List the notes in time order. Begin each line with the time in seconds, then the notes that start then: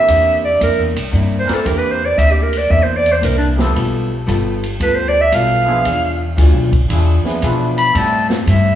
Already playing: E3 A#3 C4 D4 G4 E5
0.07 E2 C3 A#3 D4 E4, kick, hi-hat pedal, ride
0.45 D5
0.59 F2 C3 A#3 D4 E4, kick, ride
0.63 A#4
0.79 E2
0.95 C2, ride
1.11 G2 C3 A#3 D4 E4, kick, hi-hat pedal
1.40 C5
1.45 E3 C4 D4 A#4, muted upright bass stroke, snare, ride
1.54 A4
1.64 E2 C3 E3 A#3 C4 D4 E4 G4 A#4, kick, ride
1.78 B4
1.91 C5
2.06 D5
2.17 D2 C3 A#3 D4 E4 E5, kick, hi-hat pedal, ride
2.31 G4
2.42 A#4
2.53 ride
2.58 D5
2.69 E2 C3 A#3 D4 E4 E5, kick
2.83 C5
2.97 D5
3.06 ride
3.12 C5
3.21 C2 C3 A#3 D4 E4 A#4, kick, hi-hat pedal, ride
3.37 D4
3.56 F3 G3 A3 B3 D4 F4 G4 A4, snare
3.74 B1 G3 B3 F4 A4, kick, ride
4.26 G1 G3 B3 F4 A4, kick, hi-hat pedal, ride
4.63 ride
4.80 D2 G3 B3 F4 A4 B4, kick, ride
4.95 C5
5.08 D5
5.21 E5
5.32 B1 G3 B3 F4 A4 F5, kick, hi-hat pedal, ride
5.65 F3 B3 D4 E4 G#4
5.69 G#4
5.85 E2 E3 D4 F4 G#4, kick, ride
6.37 D2 E3 D4 F4 G#4, kick, hi-hat pedal, ride
6.53 B1
6.71 G#1, kick, ride
6.89 E2 E3 F3 D4 E4 F4 G#4, kick, ride
7.24 F3 B3 D4 E4 G#4, muted upright bass stroke, snare
7.42 B2 E3 F3 D4 E4 F4 G#4 B4, kick, hi-hat pedal, ride
7.78 B5, ride
7.92 A2 G3 C4 E4 A4, kick, ride
7.97 C4 E4 A5
8.29 C5, snare
8.46 G2 A2 G3 C4 E4 E5, kick, hi-hat pedal, ride